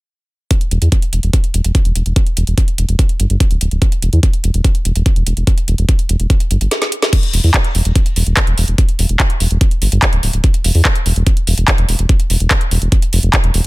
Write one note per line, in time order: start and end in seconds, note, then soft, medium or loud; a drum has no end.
0.51 kick loud
0.51 closed hi-hat medium
0.61 closed hi-hat medium
0.71 0.78 E1 loud
0.71 closed hi-hat medium
0.82 0.88 E2 medium
0.82 closed hi-hat medium
0.92 kick loud
0.92 closed hi-hat medium
1.02 closed hi-hat medium
1.13 1.19 E1 medium
1.13 closed hi-hat medium
1.23 1.30 E1 medium
1.23 closed hi-hat medium
1.33 kick loud
1.33 closed hi-hat medium
1.44 closed hi-hat medium
1.54 1.61 E1 medium
1.54 closed hi-hat medium
1.64 1.71 E1 medium
1.64 closed hi-hat medium
1.75 kick loud
1.75 closed hi-hat medium
1.85 1.92 E1 medium
1.85 closed hi-hat medium
1.95 2.02 E1 medium
1.95 closed hi-hat medium
2.06 2.12 E1 medium
2.06 closed hi-hat soft
2.16 kick loud
2.16 closed hi-hat medium
2.27 closed hi-hat soft
2.37 2.43 E1 medium
2.37 closed hi-hat medium
2.47 2.54 E1 medium
2.47 closed hi-hat medium
2.58 kick loud
2.58 closed hi-hat medium
2.68 closed hi-hat medium
2.78 2.85 E1 medium
2.78 closed hi-hat medium
2.89 2.95 E1 medium
2.89 closed hi-hat medium
2.99 kick loud
2.99 closed hi-hat medium
3.09 closed hi-hat medium
3.20 3.26 G1 medium
3.20 closed hi-hat medium
3.30 3.37 G1 medium
3.30 closed hi-hat medium
3.40 kick loud
3.40 closed hi-hat medium
3.51 3.57 D1 medium
3.51 closed hi-hat medium
3.61 3.68 D1 loud
3.61 closed hi-hat medium
3.71 3.78 D1 medium
3.71 closed hi-hat soft
3.82 kick loud
3.82 closed hi-hat medium
3.92 closed hi-hat soft
4.02 4.09 E1 loud
4.02 closed hi-hat medium
4.13 4.19 E2 medium
4.13 closed hi-hat soft
4.23 kick loud
4.23 closed hi-hat medium
4.33 closed hi-hat medium
4.44 4.50 E1 medium
4.44 closed hi-hat medium
4.54 4.61 E1 medium
4.54 closed hi-hat soft
4.64 kick loud
4.64 closed hi-hat medium
4.75 closed hi-hat medium
4.85 4.92 E1 medium
4.85 closed hi-hat medium
4.96 5.02 E1 medium
4.96 closed hi-hat medium
5.06 kick loud
5.06 closed hi-hat medium
5.16 5.23 E1 medium
5.16 closed hi-hat soft
5.27 5.33 E1 loud
5.27 closed hi-hat medium
5.37 5.43 E1 medium
5.37 closed hi-hat soft
5.47 kick loud
5.47 closed hi-hat medium
5.58 closed hi-hat soft
5.68 5.74 E1 loud
5.68 closed hi-hat medium
5.78 5.85 E1 medium
5.78 closed hi-hat medium
5.89 kick loud
5.89 closed hi-hat medium
5.99 closed hi-hat medium
6.09 6.16 E1 medium
6.09 closed hi-hat medium
6.20 6.26 E1 medium
6.20 closed hi-hat soft
6.30 kick loud
6.30 closed hi-hat medium
6.40 closed hi-hat soft
6.51 6.57 G1 medium
6.51 closed hi-hat medium
6.61 6.68 G1 medium
6.61 closed hi-hat medium
6.71 snare medium
6.71 closed hi-hat medium
6.82 snare medium
6.82 closed hi-hat medium
6.92 closed hi-hat medium
7.02 snare medium
7.02 closed hi-hat soft
7.13 kick loud
7.13 closed hi-hat medium
7.13 crash medium
7.23 closed hi-hat medium
7.33 7.40 E1 loud
7.33 open hi-hat loud
7.44 7.50 E2 medium
7.44 open hi-hat medium
7.54 kick loud
7.54 clap loud
7.54 closed hi-hat medium
7.64 closed hi-hat medium
7.75 7.81 E1 medium
7.75 open hi-hat loud
7.85 7.92 E1 medium
7.85 closed hi-hat medium
7.96 kick loud
7.96 closed hi-hat medium
8.06 closed hi-hat medium
8.16 8.23 E1 medium
8.16 open hi-hat loud
8.27 8.33 E1 medium
8.27 closed hi-hat medium
8.37 kick loud
8.37 clap loud
8.37 closed hi-hat medium
8.47 8.54 E1 medium
8.47 closed hi-hat medium
8.58 8.64 E1 loud
8.58 open hi-hat loud
8.68 8.74 E1 medium
8.68 closed hi-hat medium
8.78 kick loud
8.78 closed hi-hat medium
8.89 closed hi-hat medium
8.99 9.06 E1 medium
8.99 open hi-hat loud
9.09 9.16 E1 medium
9.09 closed hi-hat medium
9.20 kick loud
9.20 clap loud
9.20 closed hi-hat medium
9.30 closed hi-hat medium
9.40 9.47 E1 medium
9.40 open hi-hat loud
9.51 9.57 E1 medium
9.51 closed hi-hat medium
9.61 kick loud
9.61 closed hi-hat medium
9.71 closed hi-hat medium
9.82 9.88 G1 medium
9.82 open hi-hat loud
9.92 9.99 G1 medium
9.92 closed hi-hat medium
10.02 kick loud
10.02 clap loud
10.02 closed hi-hat medium
10.13 10.19 D1 medium
10.13 closed hi-hat soft
10.23 10.30 D1 medium
10.23 open hi-hat loud
10.33 10.40 D1 medium
10.33 closed hi-hat soft
10.44 kick loud
10.44 closed hi-hat medium
10.54 closed hi-hat medium
10.64 10.71 E1 medium
10.64 open hi-hat loud
10.75 10.81 E2 medium
10.75 open hi-hat medium
10.85 kick loud
10.85 clap loud
10.85 closed hi-hat medium
10.95 closed hi-hat medium
11.06 11.12 E1 medium
11.06 open hi-hat loud
11.16 11.23 E1 medium
11.16 closed hi-hat medium
11.27 kick loud
11.27 closed hi-hat medium
11.37 closed hi-hat medium
11.47 11.54 E1 medium
11.47 open hi-hat loud
11.58 11.64 E1 medium
11.58 closed hi-hat medium
11.68 kick loud
11.68 clap loud
11.68 closed hi-hat medium
11.78 11.85 E1 medium
11.78 closed hi-hat medium
11.89 11.95 E1 loud
11.89 open hi-hat loud
11.99 12.05 E1 medium
11.99 closed hi-hat soft
12.09 kick loud
12.09 closed hi-hat medium
12.20 closed hi-hat soft
12.30 12.37 E1 loud
12.30 open hi-hat loud
12.40 12.47 E1 medium
12.40 closed hi-hat medium
12.51 kick loud
12.51 clap loud
12.51 closed hi-hat medium
12.61 closed hi-hat medium
12.71 12.78 E1 medium
12.71 open hi-hat loud
12.82 12.88 E1 medium
12.82 closed hi-hat medium
12.92 kick loud
12.92 closed hi-hat medium
13.02 closed hi-hat medium
13.13 13.19 F1 medium
13.13 open hi-hat loud
13.23 13.30 F1 medium
13.23 closed hi-hat soft
13.33 kick loud
13.33 clap loud
13.33 closed hi-hat medium
13.44 13.50 E1 medium
13.44 closed hi-hat medium
13.54 13.61 E1 loud
13.54 open hi-hat loud